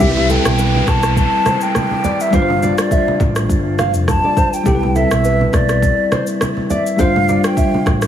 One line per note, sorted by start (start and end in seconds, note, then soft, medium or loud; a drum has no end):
0.00 0.36 C2 loud
0.00 2.28 G3 medium
0.00 2.29 C4 medium
0.00 2.29 E4 medium
0.00 0.12 G4 loud
0.00 0.08 A#4 medium
0.00 0.32 E5 loud
0.00 kick loud
0.00 downlifter medium
0.00 low conga medium
0.00 shaker medium
0.09 2.33 B4 medium
0.17 high conga medium
0.30 0.41 A4 medium
0.30 0.90 G5 loud
0.30 high conga medium
0.30 shaker medium
0.45 0.79 B1 medium
0.45 cross-stick loud
0.45 shaker medium
0.59 0.80 B4 medium
0.59 shaker medium
0.75 high conga medium
0.87 1.23 B1 medium
0.87 1.17 A5 loud
0.87 kick loud
0.87 cross-stick loud
0.87 high conga medium
0.87 low conga medium
0.87 shaker medium
1.03 cross-stick medium
1.03 shaker medium
1.17 1.64 A5 loud
1.17 kick medium
1.17 shaker medium
1.46 1.58 C5 medium
1.46 cross-stick medium
1.46 high conga medium
1.46 shaker medium
1.61 2.23 G5 loud
1.61 shaker medium
1.75 cross-stick medium
1.75 high conga medium
1.75 shaker medium
1.91 high conga medium
2.04 2.16 D5 medium
2.04 low conga medium
2.04 shaker medium
2.20 2.36 E5 medium
2.20 shaker medium
2.31 2.69 G1 loud
2.31 4.61 G3 medium
2.31 4.62 D4 medium
2.31 4.62 F4 medium
2.31 2.45 C5 loud
2.31 2.79 F5 loud
2.31 kick loud
2.31 low conga medium
2.31 shaker medium
2.36 2.41 B4 medium
2.42 4.66 C5 medium
2.50 high conga medium
2.63 2.74 D5 medium
2.63 high conga medium
2.63 shaker medium
2.78 3.33 D5 medium
2.78 cross-stick loud
2.78 shaker medium
2.91 3.13 E5 medium
2.91 kick medium
2.91 shaker medium
3.08 high conga medium
3.20 3.44 A1 medium
3.20 kick medium
3.20 high conga medium
3.20 low conga medium
3.20 shaker medium
3.36 cross-stick medium
3.36 shaker medium
3.49 3.95 G1 loud
3.49 kick medium
3.49 shaker medium
3.79 3.91 F5 medium
3.79 cross-stick medium
3.79 high conga medium
3.79 shaker medium
3.94 4.18 F1 medium
3.94 shaker medium
4.08 4.55 A5 loud
4.08 kick medium
4.08 cross-stick medium
4.08 high conga medium
4.08 shaker medium
4.24 4.34 D5 medium
4.24 high conga medium
4.37 4.49 C5 medium
4.37 kick medium
4.37 low conga medium
4.37 shaker medium
4.53 4.97 G5 loud
4.53 shaker medium
4.63 5.02 C2 loud
4.63 6.94 G3 medium
4.63 6.95 C4 medium
4.63 6.95 E4 medium
4.63 4.78 G4 loud
4.63 kick loud
4.63 low conga medium
4.63 shaker medium
4.68 4.74 A4 medium
4.75 6.99 B4 medium
4.83 high conga medium
4.95 5.07 A4 medium
4.95 5.56 E5 loud
4.95 high conga medium
4.95 shaker medium
5.11 5.45 B1 medium
5.11 cross-stick loud
5.11 shaker medium
5.25 5.46 B4 medium
5.25 shaker medium
5.41 high conga medium
5.53 5.89 B1 medium
5.53 6.41 D5 medium
5.53 kick loud
5.53 cross-stick medium
5.53 high conga medium
5.53 low conga medium
5.53 shaker medium
5.69 cross-stick medium
5.69 shaker medium
5.82 kick medium
5.82 shaker medium
6.12 6.24 C5 medium
6.12 cross-stick medium
6.12 high conga medium
6.12 shaker medium
6.27 shaker medium
6.41 cross-stick loud
6.41 high conga medium
6.41 shaker medium
6.57 high conga medium
6.70 6.82 D5 medium
6.70 7.02 E5 medium
6.70 low conga medium
6.70 shaker medium
6.87 shaker medium
6.96 7.35 G1 loud
6.96 8.07 G3 medium
6.96 8.07 D4 medium
6.96 8.07 F4 medium
6.96 7.11 C5 loud
6.96 7.45 F5 loud
6.96 kick loud
6.96 low conga medium
6.96 shaker medium
7.01 8.07 C5 medium
7.16 high conga medium
7.28 7.40 D5 medium
7.28 high conga medium
7.28 shaker soft
7.44 7.99 G5 loud
7.44 cross-stick loud
7.44 shaker medium
7.57 7.79 E5 medium
7.57 kick medium
7.57 shaker medium
7.74 high conga medium
7.86 8.07 A1 medium
7.86 kick medium
7.86 cross-stick medium
7.86 high conga medium
7.86 low conga medium
7.86 shaker medium
8.02 cross-stick medium
8.02 shaker medium